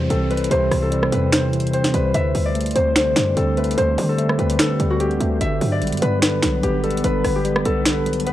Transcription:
0.00 0.51 C3 medium
0.00 2.11 C3 medium
0.00 0.72 E3 medium
0.00 0.29 G3 medium
0.00 2.11 G3 medium
0.00 0.10 C4 medium
0.00 2.11 E4 medium
0.00 0.82 G4 medium
0.00 0.36 C5 medium
0.00 5.37 C5 medium
0.00 1.04 D5 medium
0.00 0.60 E5 loud
0.00 downlifter medium
0.10 0.49 C2 loud
0.10 1.11 C4 medium
0.10 0.82 A4 medium
0.10 closed hi-hat medium
0.30 0.90 G3 medium
0.30 0.57 B4 medium
0.30 closed hi-hat soft
0.37 closed hi-hat medium
0.44 closed hi-hat medium
0.51 0.71 C2 loud
0.51 1.32 C3 loud
0.51 1.18 C5 loud
0.51 closed hi-hat medium
0.71 1.11 C2 loud
0.71 1.52 E3 medium
0.71 cross-stick medium
0.71 open hi-hat medium
0.82 3.02 A4 medium
0.92 1.93 G3 medium
0.92 closed hi-hat medium
1.03 cross-stick medium
1.12 1.91 E2 loud
1.12 1.72 C4 medium
1.12 1.39 B4 medium
1.12 closed hi-hat medium
1.33 2.14 C3 medium
1.33 1.73 C5 medium
1.33 finger snap loud
1.33 snare loud
1.33 closed hi-hat medium
1.53 2.14 E3 medium
1.53 closed hi-hat medium
1.60 closed hi-hat medium
1.67 closed hi-hat medium
1.73 2.14 C4 medium
1.73 2.00 C5 medium
1.73 closed hi-hat medium
1.84 snare medium
1.94 2.13 C2 loud
1.94 2.15 G3 medium
1.94 2.81 B4 medium
1.94 closed hi-hat medium
2.14 2.34 D2 loud
2.14 2.95 D3 medium
2.14 5.38 D3 medium
2.14 8.33 D4 medium
2.14 5.38 G4 medium
2.14 3.87 E5 loud
2.14 closed hi-hat medium
2.35 2.74 D2 loud
2.35 3.15 G3 medium
2.35 open hi-hat medium
2.46 4.30 D5 medium
2.55 3.56 A3 medium
2.55 closed hi-hat medium
2.61 closed hi-hat medium
2.66 closed hi-hat medium
2.71 closed hi-hat medium
2.75 3.15 D2 loud
2.75 3.35 C4 medium
2.75 2.96 C5 loud
2.75 closed hi-hat medium
2.96 3.76 D3 medium
2.96 3.63 C5 medium
2.96 finger snap loud
2.96 snare loud
2.96 closed hi-hat medium
3.16 3.36 F#2 loud
3.16 3.97 G3 medium
3.16 finger snap medium
3.16 snare loud
3.16 closed hi-hat medium
3.37 3.76 D2 loud
3.37 4.37 C4 medium
3.37 4.08 A4 medium
3.37 closed hi-hat medium
3.57 4.17 A3 medium
3.57 3.84 B4 medium
3.57 closed hi-hat soft
3.64 closed hi-hat medium
3.71 closed hi-hat medium
3.77 3.97 D2 loud
3.77 4.58 D3 loud
3.77 4.45 C5 loud
3.77 closed hi-hat medium
3.98 4.37 D3 loud
3.98 4.79 G3 medium
3.98 open hi-hat medium
4.09 4.59 A4 medium
4.18 5.19 A3 medium
4.18 closed hi-hat medium
4.29 cross-stick medium
4.38 4.58 D2 loud
4.38 4.99 C4 medium
4.38 6.02 B4 medium
4.38 closed hi-hat medium
4.50 closed hi-hat medium
4.59 5.39 D3 medium
4.59 6.79 A4 medium
4.59 finger snap loud
4.59 snare loud
4.59 closed hi-hat medium
4.80 5.19 D2 loud
4.80 5.41 G3 medium
4.80 closed hi-hat medium
4.90 5.06 F#4 medium
5.00 5.41 C4 medium
5.00 6.63 G4 medium
5.00 closed hi-hat medium
5.11 closed hi-hat soft
5.20 5.40 D2 loud
5.20 5.41 A3 medium
5.20 closed hi-hat medium
5.41 5.60 G1 loud
5.41 6.21 D3 medium
5.41 8.33 B3 medium
5.41 8.33 B4 medium
5.41 7.13 E5 loud
5.41 8.33 F#5 medium
5.41 closed hi-hat medium
5.61 5.83 G2 loud
5.61 6.42 F#3 medium
5.61 open hi-hat medium
5.72 7.57 D5 medium
5.82 5.94 A1 loud
5.82 6.83 G3 medium
5.82 closed hi-hat medium
5.87 closed hi-hat medium
5.92 6.02 G2 loud
5.92 closed hi-hat medium
5.97 closed hi-hat medium
6.02 6.41 G2 loud
6.02 6.62 B3 medium
6.02 6.22 B4 loud
6.02 closed hi-hat medium
6.22 7.03 D3 medium
6.22 7.04 B4 medium
6.22 finger snap loud
6.22 snare loud
6.22 closed hi-hat medium
6.43 6.63 B1 loud
6.43 7.45 F#3 medium
6.43 finger snap medium
6.43 snare loud
6.43 closed hi-hat medium
6.63 7.03 G1 loud
6.63 7.64 B3 medium
6.63 7.35 G4 medium
6.63 closed hi-hat medium
6.83 7.44 G3 medium
6.83 7.65 A4 medium
6.83 closed hi-hat soft
6.91 closed hi-hat medium
6.97 closed hi-hat medium
7.04 7.24 G1 loud
7.04 7.85 D3 loud
7.04 7.85 B4 loud
7.04 closed hi-hat medium
7.24 7.64 G1 loud
7.24 cross-stick medium
7.24 open hi-hat medium
7.35 8.33 G4 medium
7.45 8.33 G3 medium
7.45 closed hi-hat medium
7.56 cross-stick loud
7.65 8.33 B1 loud
7.65 8.25 B3 medium
7.65 8.33 A4 medium
7.65 closed hi-hat medium
7.86 8.33 D3 medium
7.86 8.26 B4 medium
7.86 finger snap loud
7.86 snare loud
7.86 closed hi-hat medium
8.06 8.33 F#3 medium
8.06 closed hi-hat medium
8.13 closed hi-hat medium
8.20 closed hi-hat medium
8.27 8.33 B3 medium
8.27 8.33 B4 medium
8.27 closed hi-hat medium

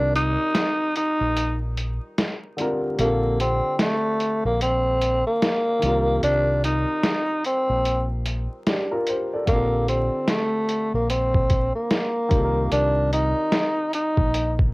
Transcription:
0.00 0.36 C2 loud
0.00 2.52 D#3 medium
0.00 2.53 G3 medium
0.00 2.55 C4 medium
0.00 0.12 D4 medium
0.00 2.56 F4 medium
0.00 2.60 A#4 medium
0.16 0.93 D#4 medium
0.16 closed hi-hat medium
0.55 snare loud
0.55 closed hi-hat medium
0.96 1.58 D#4 medium
0.96 closed hi-hat medium
1.21 1.98 A#1 medium
1.37 closed hi-hat medium
1.77 closed hi-hat medium
2.18 snare loud
2.18 closed hi-hat medium
2.57 2.98 D3 medium
2.57 2.96 G3 medium
2.57 2.98 C4 medium
2.57 3.00 F4 medium
2.57 closed hi-hat medium
2.61 3.00 A#4 medium
2.95 3.60 A#1 loud
2.95 3.05 C3 soft
2.95 5.78 G3 medium
2.95 closed hi-hat medium
3.00 5.80 D3 medium
3.00 3.36 A#3 medium
3.00 5.79 C4 medium
3.00 5.80 F4 medium
3.05 5.81 A4 medium
3.40 3.76 C4 medium
3.40 closed hi-hat medium
3.79 4.42 A3 medium
3.79 snare loud
3.79 closed hi-hat medium
4.20 closed hi-hat medium
4.45 5.22 A#1 medium
4.45 4.60 A#3 medium
4.61 5.23 C4 medium
4.61 closed hi-hat medium
5.02 closed hi-hat medium
5.27 6.20 A#3 medium
5.42 snare loud
5.42 closed hi-hat medium
5.79 6.20 C2 medium
5.79 9.01 D#3 medium
5.79 9.02 G3 medium
5.79 closed hi-hat medium
5.83 9.03 C4 medium
5.83 8.64 F4 medium
5.88 8.65 A#4 medium
6.23 6.84 C2 loud
6.23 6.60 D4 medium
6.23 closed hi-hat medium
6.64 7.41 D#4 medium
6.64 closed hi-hat medium
7.03 snare loud
7.03 closed hi-hat medium
7.44 8.06 C4 medium
7.44 closed hi-hat medium
7.69 8.46 A#1 medium
7.85 closed hi-hat medium
8.26 closed hi-hat medium
8.67 8.91 D4 medium
8.67 8.91 G4 medium
8.67 snare loud
8.67 closed hi-hat medium
8.91 9.07 F4 medium
8.91 9.06 A#4 medium
9.07 9.31 G4 medium
9.07 9.31 C5 medium
9.07 closed hi-hat medium
9.33 9.53 A4 medium
9.33 9.71 D5 medium
9.46 10.08 A#1 loud
9.46 12.26 D3 medium
9.46 12.27 G3 medium
9.46 9.85 A#3 loud
9.46 kick loud
9.46 closed hi-hat medium
9.50 12.29 C4 medium
9.50 12.30 F4 medium
9.55 12.31 A4 medium
9.88 10.25 C4 medium
9.88 closed hi-hat medium
10.28 10.90 A3 medium
10.28 snare loud
10.28 closed hi-hat medium
10.69 closed hi-hat medium
10.94 11.71 A#1 medium
10.94 11.12 A#3 medium
11.10 11.71 C4 medium
11.10 closed hi-hat medium
11.34 kick medium
11.50 kick medium
11.50 closed hi-hat medium
11.75 12.68 A#3 medium
11.91 snare loud
11.91 closed hi-hat medium
12.29 12.68 C2 loud
12.29 14.74 D#3 medium
12.29 14.74 G3 medium
12.29 kick loud
12.29 closed hi-hat medium
12.33 14.74 C4 medium
12.33 14.74 F4 medium
12.38 12.42 A4 medium
12.45 14.74 A#4 medium
12.72 13.33 C2 loud
12.72 13.09 D4 medium
12.72 closed hi-hat medium
13.13 13.90 D#4 medium
13.13 closed hi-hat medium
13.52 snare loud
13.52 closed hi-hat medium
13.93 14.55 D#4 medium
13.93 closed hi-hat medium
14.17 14.74 A#1 medium
14.17 kick medium
14.34 closed hi-hat medium
14.59 kick medium

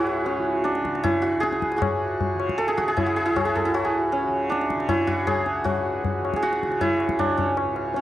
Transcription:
0.00 1.35 C#2 medium
0.00 1.86 G#2 medium
0.00 0.38 C#3 medium
0.00 1.03 E4 medium
0.00 1.21 F#4 medium
0.00 1.40 G#4 medium
0.00 0.70 C#5 medium
0.07 tabla na medium
0.26 0.70 C#4 medium
0.26 tabla tin medium
0.38 0.86 C#3 medium
0.64 4.18 D4 medium
0.64 tabla te medium
0.75 tabla te medium
0.85 2.34 C#3 medium
0.85 tabla ke medium
0.95 tabla te medium
1.04 2.96 E4 loud
1.04 tabla na medium
1.04 tabla ge medium
1.22 1.77 F#4 medium
1.22 tabla te medium
1.35 3.30 C#2 medium
1.40 1.76 G#4 loud
1.40 tabla te medium
1.52 tabla te medium
1.62 tabla ke medium
1.72 tabla te medium
1.76 2.77 F#4 medium
1.76 2.64 G#4 medium
1.82 tabla na loud
1.82 tabla ge loud
1.86 3.79 G#2 medium
2.21 tabla tin medium
2.21 tabla ge medium
2.34 2.82 C#3 medium
2.40 tabla na medium
2.49 tabla ke medium
2.58 2.74 A4 loud
2.58 tabla te medium
2.68 2.88 G#4 medium
2.68 tabla te medium
2.77 3.06 F#4 loud
2.77 tabla ke medium
2.82 4.28 C#3 medium
2.88 3.16 G#4 loud
2.88 tabla te medium
2.97 3.25 E4 medium
2.97 tabla tin medium
2.97 tabla ge medium
3.06 3.36 F#4 medium
3.16 3.45 G#4 loud
3.26 3.65 E4 medium
3.30 5.23 C#2 medium
3.36 3.74 F#4 medium
3.36 tabla na medium
3.36 tabla ge medium
3.45 3.61 G#4 medium
3.55 3.91 A4 medium
3.55 tabla ge medium
3.65 4.88 E4 medium
3.74 5.07 F#4 medium
3.74 tabla na medium
3.79 5.72 G#2 medium
3.85 5.27 G#4 medium
4.12 4.56 C#4 medium
4.12 tabla tin medium
4.28 4.75 C#3 medium
4.50 7.18 D4 medium
4.50 tabla te medium
4.61 tabla te medium
4.70 tabla ke medium
4.75 6.21 C#3 medium
4.80 tabla te medium
4.89 6.81 E4 loud
4.89 tabla na medium
4.89 tabla ge medium
5.07 5.64 F#4 loud
5.07 tabla ge medium
5.23 7.15 C#2 medium
5.23 6.36 G#4 loud
5.27 tabla na loud
5.27 tabla ge medium
5.46 tabla te medium
5.64 6.42 F#4 medium
5.64 tabla na loud
5.64 tabla ge loud
5.72 7.62 G#2 medium
6.05 tabla tin medium
6.05 tabla ge medium
6.21 6.67 C#3 medium
6.25 tabla na medium
6.34 8.01 G#4 medium
6.34 tabla ke medium
6.42 8.01 F#4 loud
6.42 tabla te medium
6.53 tabla te medium
6.63 tabla ke medium
6.67 8.01 C#3 medium
6.72 tabla te medium
6.81 8.01 E4 loud
6.81 tabla tin medium
6.81 tabla ge medium
7.00 tabla na medium
7.09 tabla ke medium
7.16 8.01 C#2 medium
7.16 7.43 D4 loud
7.16 tabla na loud
7.16 tabla ge medium
7.37 7.96 C#4 medium
7.37 tabla ge medium
7.57 tabla na medium
7.63 8.01 G#2 medium
7.76 tabla na medium
7.94 8.01 C#4 medium
7.94 tabla tin medium

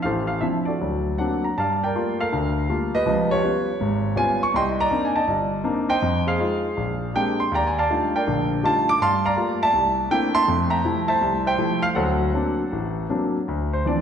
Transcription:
0.02 0.37 A1 medium
0.02 0.66 A4 medium
0.02 0.77 C5 medium
0.02 0.08 F5 medium
0.27 0.42 F5 medium
0.41 0.68 F3 soft
0.41 0.68 C4 soft
0.41 0.69 D4 soft
0.41 0.69 E4 soft
0.41 0.46 E5 medium
0.65 1.41 F#4 soft
0.65 1.41 A4 soft
0.65 1.39 D5 medium
0.81 1.14 D2 soft
0.81 1.14 F#3 medium
1.18 1.46 F#3 soft
1.18 1.46 A#3 soft
1.18 1.46 C4 soft
1.18 1.46 D4 soft
1.18 1.42 F#5 medium
1.44 1.57 A#5 medium
1.57 1.90 G2 medium
1.57 1.82 D5 medium
1.57 2.19 F5 medium
1.57 1.83 A5 medium
1.84 2.20 A#4 medium
1.84 2.54 D5 medium
1.84 2.18 G5 medium
1.95 2.21 G3 soft
1.95 2.21 A3 soft
1.95 2.21 A#3 soft
1.95 2.21 F4 medium
2.21 2.91 A4 soft
2.21 2.91 A#4 medium
2.21 2.97 F5 medium
2.32 2.65 D2 medium
2.32 2.65 D3 medium
2.69 2.95 G3 medium
2.69 2.95 A3 soft
2.69 2.95 A#3 soft
2.69 2.95 F4 medium
2.95 3.30 G4 medium
2.95 3.64 B4 medium
2.95 3.29 D#5 loud
3.06 3.39 C#2 medium
3.06 3.38 F3 medium
3.31 3.43 F4 medium
3.31 4.14 G4 medium
3.31 4.13 C#5 loud
3.43 3.69 G3 soft
3.43 3.69 B3 soft
3.43 3.69 C#4 soft
3.43 3.69 F4 soft
3.80 4.12 G#1 medium
3.80 4.12 G#2 medium
4.16 4.42 G3 medium
4.16 4.42 B3 medium
4.16 4.42 C#4 medium
4.16 4.42 F4 medium
4.16 4.42 G#5 medium
4.43 4.54 C#6 medium
4.54 4.86 C2 medium
4.54 4.79 D#5 medium
4.54 5.25 G5 medium
4.54 4.61 C6 medium
4.80 5.14 D5 medium
4.80 5.14 D#5 medium
4.80 5.05 A#5 loud
4.90 5.16 A#3 soft
4.90 5.17 C4 soft
4.90 5.17 D4 soft
4.90 5.17 D#4 medium
5.05 5.15 G#5 medium
5.16 5.86 D5 medium
5.16 5.86 D#5 medium
5.16 5.92 A5 medium
5.28 5.60 G1 medium
5.28 5.60 G2 medium
5.64 5.91 A#3 medium
5.64 5.90 C4 soft
5.64 5.91 D4 medium
5.64 5.91 D#4 medium
5.89 6.26 C5 medium
5.89 6.60 D#5 medium
5.89 6.24 G5 loud
6.02 6.35 F2 medium
6.27 7.11 G#4 medium
6.27 7.11 C5 medium
6.27 7.11 F5 medium
6.40 6.66 G#3 soft
6.40 6.66 D#4 soft
6.40 6.66 F4 soft
6.77 7.10 A#1 medium
7.14 7.40 G#3 medium
7.14 7.41 A#3 soft
7.14 7.41 C4 soft
7.14 7.41 D4 soft
7.14 7.41 G4 medium
7.14 7.41 G5 medium
7.40 7.52 C6 medium
7.52 7.84 D#2 medium
7.52 7.77 D5 medium
7.52 8.14 G5 medium
7.52 7.68 A#5 medium
7.67 7.77 G#5 medium
7.78 8.14 D5 medium
7.78 8.48 F5 medium
7.78 8.13 A5 medium
7.90 8.16 G3 soft
7.90 8.16 A3 soft
7.90 8.16 D4 soft
7.90 8.16 D#4 soft
7.90 8.16 F4 medium
8.15 8.85 A#4 medium
8.15 8.85 D5 medium
8.15 8.66 G5 medium
8.27 8.59 A#1 medium
8.27 8.59 D3 medium
8.63 8.89 G3 medium
8.63 8.89 A3 soft
8.63 8.90 D4 soft
8.63 8.90 D#4 medium
8.63 8.90 F4 medium
8.63 8.90 A5 medium
8.89 9.01 D6 loud
9.00 9.33 G2 medium
9.00 9.24 F5 medium
9.00 9.61 A5 medium
9.00 9.27 C6 loud
9.25 9.61 D5 medium
9.25 9.71 F5 medium
9.25 9.64 A#5 medium
9.36 9.63 G3 medium
9.36 9.63 A3 soft
9.36 9.63 A#3 soft
9.36 9.63 F4 medium
9.62 10.32 D5 medium
9.62 10.32 E5 medium
9.62 10.09 A5 loud
9.73 10.06 C2 medium
10.11 10.37 A3 medium
10.11 10.37 A#3 soft
10.11 10.37 C4 medium
10.11 10.37 D4 medium
10.11 10.37 E4 medium
10.11 10.34 G5 loud
10.35 10.69 E5 medium
10.35 11.05 A5 medium
10.35 10.69 C6 loud
10.48 10.80 F2 medium
10.48 10.80 A3 medium
10.70 11.07 E5 medium
10.70 11.41 G5 medium
10.70 11.06 A#5 medium
10.85 11.10 F3 soft
10.85 11.10 G3 soft
10.85 11.10 A3 soft
10.85 11.11 E4 medium
11.08 11.45 C5 medium
11.08 11.45 E5 medium
11.08 11.47 A5 medium
11.21 11.54 C2 medium
11.47 11.93 C5 medium
11.47 11.93 E5 medium
11.47 11.82 G5 loud
11.58 11.85 F3 medium
11.58 11.85 G3 soft
11.58 11.85 A3 medium
11.58 11.85 E4 medium
11.82 11.87 F5 medium
11.95 12.29 D2 medium
11.95 12.29 F#3 medium
11.95 13.06 A4 medium
11.95 13.06 C5 medium
11.95 13.05 F#5 medium
12.34 12.60 F#3 soft
12.34 12.60 A#3 soft
12.34 12.61 C4 soft
12.34 12.61 D4 medium
12.72 13.05 A1 medium
13.09 13.36 F#3 soft
13.09 13.36 A#3 soft
13.09 13.36 C4 soft
13.09 13.37 D4 medium
13.48 13.81 D2 medium
13.73 13.86 C5 medium
13.85 14.01 E3 soft
13.85 14.01 F3 soft
13.85 14.01 C4 soft
13.85 14.01 D4 medium
13.85 14.01 D5 medium

